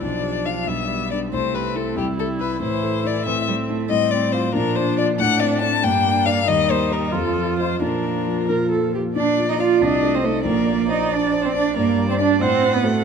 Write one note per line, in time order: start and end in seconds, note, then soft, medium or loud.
0.02 0.65 B1 soft
0.02 0.70 F3 soft
0.02 0.71 D4 soft
0.02 0.47 D5 soft
0.23 0.59 G4 soft
0.46 0.80 D4 soft
0.46 0.69 F5 soft
0.67 1.30 B1 soft
0.67 1.33 G3 soft
0.67 1.32 B3 soft
0.67 1.10 E5 soft
0.89 1.23 G4 soft
1.11 1.33 D4 soft
1.11 1.19 D5 soft
1.32 1.94 C2 soft
1.32 2.00 A3 soft
1.32 1.98 C4 soft
1.32 1.56 C5 medium
1.54 1.88 G4 soft
1.54 1.78 B4 soft
1.74 2.09 E4 soft
1.74 1.97 A4 soft
1.95 2.59 C2 soft
1.95 2.61 G3 soft
1.95 2.61 E4 soft
1.95 2.05 G4 soft
2.18 2.52 G4 soft
2.18 2.27 A4 soft
2.39 2.61 E4 soft
2.39 2.61 B4 soft
2.60 3.24 A2 soft
2.60 3.24 E3 soft
2.60 3.28 E4 soft
2.60 3.08 C5 medium
2.83 3.17 A4 soft
3.04 3.38 E4 soft
3.04 3.25 D5 medium
3.26 3.88 A2 soft
3.26 3.34 E3 soft
3.26 3.90 C4 soft
3.26 3.47 E5 medium
3.47 3.55 G3 soft
3.47 3.82 A4 soft
3.68 3.91 A3 soft
3.68 3.90 E4 soft
3.90 4.52 A2 soft
3.90 4.53 G3 soft
3.90 4.53 C4 soft
3.90 4.12 D#5 medium
4.11 4.45 C4 soft
4.11 4.34 D5 medium
4.32 4.52 F4 soft
4.32 4.53 C5 medium
4.32 4.52 F5 soft
4.53 5.17 A#2 soft
4.53 5.20 F3 soft
4.53 5.17 D4 soft
4.53 4.77 A#4 medium
4.75 5.10 D4 soft
4.75 4.97 C5 medium
4.98 5.16 F4 soft
4.98 5.06 D5 medium
4.98 5.17 D5 soft
5.18 5.81 A2 soft
5.18 5.84 A3 soft
5.18 5.82 D4 soft
5.18 5.41 F#5 medium
5.40 5.74 C4 soft
5.40 5.61 D5 medium
5.61 5.80 D4 soft
5.61 5.81 D5 soft
5.61 5.85 A5 medium
5.83 6.46 G2 soft
5.83 6.47 A#3 soft
5.83 6.46 D4 soft
5.83 6.27 G5 medium
6.05 6.38 A#3 soft
6.26 6.45 D4 soft
6.26 6.45 D5 soft
6.26 6.49 F5 medium
6.47 7.12 D#2 medium
6.47 7.15 G3 soft
6.47 7.14 D#4 soft
6.47 6.72 D#5 medium
6.69 7.04 A#3 soft
6.69 6.94 C5 medium
6.91 7.11 G4 soft
6.91 7.16 A#4 medium
6.91 7.11 D#5 soft
7.12 7.79 F2 soft
7.12 7.80 F3 soft
7.12 7.80 F4 soft
7.12 7.58 A4 medium
7.36 7.72 F3 soft
7.59 7.79 F4 soft
7.59 7.81 C5 medium
7.59 7.79 D#5 soft
7.81 8.48 A#2 soft
7.81 8.93 F3 soft
7.81 8.43 D4 soft
7.81 8.48 A#4 medium
8.05 8.41 F4 soft
8.27 8.62 F3 soft
8.49 9.14 A#2 soft
8.49 8.70 A#4 soft
8.71 9.07 F4 soft
8.71 8.93 A4 soft
8.94 9.16 F3 soft
8.94 9.03 G4 soft
9.16 9.80 A#2 soft
9.16 9.47 D4 medium
9.16 9.50 D5 medium
9.16 9.84 D5 soft
9.37 9.73 F3 soft
9.49 9.60 D#4 soft
9.49 9.62 D#5 medium
9.58 9.79 F4 soft
9.58 9.83 F4 medium
9.58 9.79 D5 soft
9.58 9.80 F5 soft
9.81 10.44 C2 soft
9.81 10.16 D4 medium
9.81 10.16 D5 medium
9.81 10.45 D#5 soft
10.02 10.37 A3 soft
10.14 10.26 C4 soft
10.14 10.27 C5 soft
10.23 10.46 A3 medium
10.23 10.44 D#4 soft
10.23 10.45 A4 soft
10.23 10.44 C5 soft
10.45 11.71 A#1 soft
10.45 10.91 A#3 medium
10.45 10.88 A#4 medium
10.45 12.43 D5 soft
10.67 11.02 D5 soft
10.88 11.15 D#4 medium
10.88 11.11 C5 soft
10.88 11.12 D#5 soft
11.10 11.47 D4 medium
11.10 11.44 D5 soft
11.32 11.54 C5 soft
11.42 11.55 C4 medium
11.42 11.53 C5 soft
11.54 11.76 D4 medium
11.54 11.75 D5 medium
11.54 11.76 D5 soft
11.76 12.39 G2 soft
11.76 12.08 A#3 medium
11.76 12.07 A#4 medium
11.98 12.32 G3 soft
12.08 12.14 C4 medium
12.08 12.18 C5 soft
12.18 12.39 D4 soft
12.18 12.40 D4 medium
12.18 12.26 D5 soft
12.18 12.39 D5 soft
12.39 13.03 A2 soft
12.39 12.75 C4 medium
12.39 12.74 C5 medium
12.39 13.04 F#5 soft
12.62 12.96 C4 soft
12.72 12.84 B3 medium
12.72 12.86 B4 medium
12.83 13.04 A3 medium
12.83 13.03 F#4 soft
12.83 13.04 A4 medium
12.83 13.03 C5 soft